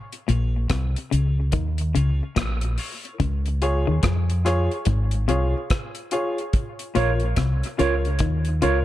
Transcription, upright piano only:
0.28 0.52 F4 medium
0.28 0.52 A#4 medium
0.28 0.52 C#5 medium
1.11 1.35 F4 medium
1.11 1.36 A#4 medium
1.11 1.36 C#5 medium
1.94 2.19 F4 medium
1.94 2.19 A#4 medium
1.94 2.19 C#5 loud
2.78 3.02 F4 medium
2.78 3.03 A#4 medium
2.78 3.03 C#5 loud
3.62 3.86 F4 medium
3.62 3.86 G#4 medium
3.62 3.86 C#5 loud
4.45 4.69 F4 medium
4.45 4.69 G#4 medium
4.45 4.70 C#5 loud
5.28 5.52 F4 medium
5.28 5.53 G#4 medium
5.28 5.53 C#5 medium
6.12 6.36 F4 medium
6.12 6.36 G#4 medium
6.12 6.36 C#5 loud
6.95 7.19 F4 medium
6.95 7.19 A#4 medium
6.95 7.20 C#5 loud
7.78 8.02 F4 medium
7.78 8.03 A#4 medium
7.78 8.03 C#5 loud
8.62 8.85 F4 medium
8.62 8.85 A#4 medium
8.62 8.85 C#5 loud

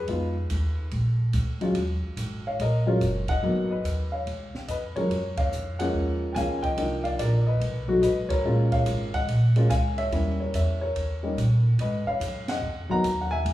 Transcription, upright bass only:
0.08 0.49 F2 medium
0.50 0.91 D#2 medium
0.92 1.32 A#1 medium
1.33 1.74 D2 medium
1.75 2.01 D#2 medium
2.03 muted upright bass stroke soft
2.17 2.58 G#1 medium
2.59 3.00 A#1 medium
3.01 3.42 F#1 medium
3.43 3.83 G#1 medium
3.84 4.25 D#2 medium
4.26 4.52 C#2 medium
4.54 muted upright bass stroke soft
4.68 4.94 F2 medium
4.95 muted upright bass stroke soft
5.09 5.50 F#2 medium
5.51 5.92 F2 medium
5.93 6.34 D#2 medium
6.36 6.76 C#2 medium
6.77 7.18 C2 medium
7.19 7.60 A#1 medium
7.60 8.01 B1 medium
8.02 8.43 G#1 medium
8.44 8.85 A#1 medium
8.86 9.27 G#1 medium
9.27 9.68 A#1 medium
9.70 10.10 C#2 medium
10.11 10.52 D#2 medium
10.54 10.94 E2 medium
10.95 11.36 D#2 medium
11.37 11.78 A#2 medium
11.78 12.04 G#2 medium
12.06 muted upright bass stroke soft
12.20 12.61 F#2 medium
12.62 12.88 F2 medium
12.90 muted upright bass stroke soft
13.04 13.44 D#2 medium
13.45 13.53 C#2 medium

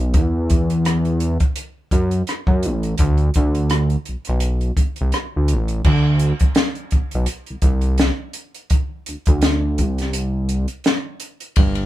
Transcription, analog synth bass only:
0.00 0.17 B1 medium
0.15 1.38 E2 loud
1.92 2.23 F#2 medium
2.48 2.67 F#2 medium
2.66 2.95 A1 loud
3.00 3.30 D2 loud
3.37 3.96 D2 medium
4.09 4.16 B1 soft
4.29 4.71 B1 medium
4.78 4.86 C2 soft
5.01 5.13 C2 medium
5.36 5.54 D2 medium
5.53 5.82 A1 loud
5.86 6.33 D2 loud
6.42 6.48 B1 soft
6.94 7.01 B1 soft
7.15 7.27 B1 medium
7.50 7.56 C2 soft
7.64 8.11 C2 loud
9.09 9.16 D2 soft
9.28 9.82 D2 medium
9.80 10.67 C2 medium
11.58 11.86 G1 loud

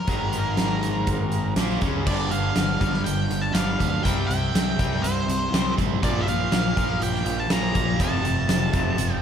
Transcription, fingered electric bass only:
0.07 1.53 G#1 medium
1.56 1.80 A#1 loud
1.82 2.05 C#2 medium
2.07 2.27 G1 medium
2.31 2.51 G1 medium
2.56 2.77 G1 medium
2.81 3.01 G1 medium
3.07 3.27 G1 medium
3.30 3.51 G1 medium
3.54 3.75 G1 medium
3.80 4.00 D2 medium
4.05 4.25 C2 medium
4.29 4.50 C2 medium
4.54 4.75 C2 medium
4.79 4.99 C2 medium
5.03 5.24 C2 loud
5.28 5.48 C2 medium
5.53 5.73 C2 medium
5.78 5.98 A1 medium
6.03 6.23 A#1 medium
6.28 6.48 A#1 medium
6.53 6.73 A#1 medium
6.77 6.97 A#1 medium
7.02 7.22 A#1 medium
7.26 7.46 A#1 loud
7.51 7.71 A#1 loud
7.75 7.95 A#1 medium
8.00 8.20 F1 medium
8.24 8.44 F1 medium
8.49 8.69 F1 medium
8.73 8.94 F1 medium
8.99 9.19 F1 medium

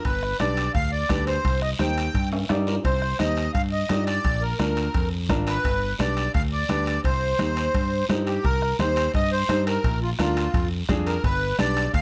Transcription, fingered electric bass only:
0.05 0.33 G1 loud
0.40 0.68 B1 medium
0.74 1.03 D2 medium
1.10 1.38 D2 medium
1.45 1.73 C2 medium
1.79 2.07 D#2 medium
2.14 2.42 G2 medium
2.50 2.78 G2 medium
2.84 3.12 C2 medium
3.19 3.47 D#2 medium
3.54 3.82 G2 medium
3.90 4.18 G2 medium
4.24 4.52 A#1 loud
4.59 4.87 D2 medium
4.94 5.31 F2 medium
5.29 5.57 G#1 medium
5.64 5.92 G1 loud
5.99 6.27 B1 medium
6.35 6.62 D2 medium
6.70 6.98 D2 medium
7.04 7.32 C2 loud
7.39 7.67 D#2 medium
7.74 8.02 G2 medium
8.09 8.37 G2 medium
8.44 8.72 C2 medium
8.79 9.07 D#2 medium
9.14 9.42 G2 medium
9.49 9.77 G2 medium
9.84 10.12 A#1 loud
10.19 10.47 D2 medium
10.54 10.82 F2 medium
10.89 11.17 F2 medium
11.24 11.52 G1 loud
11.59 11.87 B1 medium
11.93 12.02 D2 medium

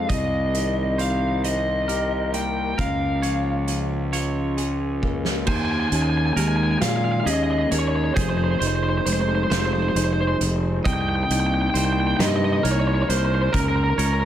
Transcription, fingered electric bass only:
0.10 2.74 C2 medium
2.78 5.47 C#2 medium
5.47 5.86 D#2 medium
5.92 6.31 D#2 medium
6.36 6.75 D#2 medium
6.81 7.20 A#2 medium
7.26 7.65 D#2 medium
7.71 8.10 D#2 medium
8.16 8.55 F1 medium
8.61 9.00 F1 medium
9.06 9.45 F1 medium
9.51 9.89 F1 medium
9.95 10.34 F1 medium
10.40 10.79 F1 medium
10.85 11.24 C2 medium
11.30 11.68 C2 medium
11.74 12.13 C2 medium
12.19 12.58 G2 medium
12.64 13.03 C2 medium
13.09 13.48 C2 medium
13.54 13.92 C#2 medium
13.98 14.25 C#2 medium

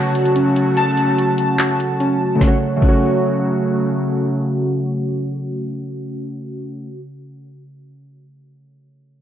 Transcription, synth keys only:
0.00 1.58 F#4 loud
0.00 0.76 A5 loud
0.36 1.99 C#4 medium
0.77 2.41 A5 loud
1.59 2.41 F#4 medium
2.00 2.40 C#4 medium
2.35 2.49 A3 medium
2.41 2.53 C#4 medium
2.47 2.56 F#4 medium
2.76 6.88 A3 medium
2.82 6.94 C#4 medium
2.88 7.00 F#4 medium

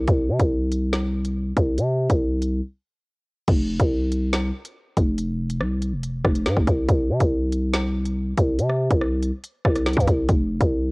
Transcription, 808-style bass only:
0.08 0.30 C2 loud
0.29 0.39 C3 loud
0.40 1.53 C2 loud
1.57 1.79 C2 loud
1.78 2.08 C3 loud
2.10 2.61 C2 loud
3.48 3.79 F1 loud
3.80 4.51 C2 loud
4.97 5.62 F1 loud
5.61 5.94 C2 loud
5.93 6.23 F1 loud
6.25 6.47 F1 loud
6.46 6.56 G#2 loud
6.57 6.67 F1 loud
6.67 6.88 C2 loud
6.88 7.11 C2 loud
7.10 7.20 C3 loud
7.20 8.33 C2 loud
8.37 8.60 C2 loud
8.59 8.89 C3 loud
8.91 9.31 C2 loud
9.65 9.96 C2 loud
9.97 10.07 G2 loud
10.08 10.28 C2 loud
10.29 10.60 F1 loud
10.61 10.92 C2 loud

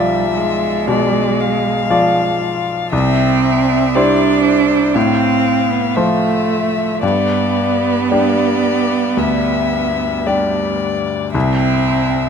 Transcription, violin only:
0.00 0.88 E5 soft
0.89 1.42 D5 soft
1.40 2.92 F5 soft
2.92 3.43 E5 soft
3.44 3.96 E5 soft
3.95 4.43 D5 soft
4.44 4.96 C5 soft
4.94 5.97 F5 soft
5.95 7.02 E5 soft
7.03 7.99 D5 soft
8.12 9.20 D5 soft
9.19 10.28 E5 soft
10.26 11.34 D5 soft
11.35 12.29 E5 soft

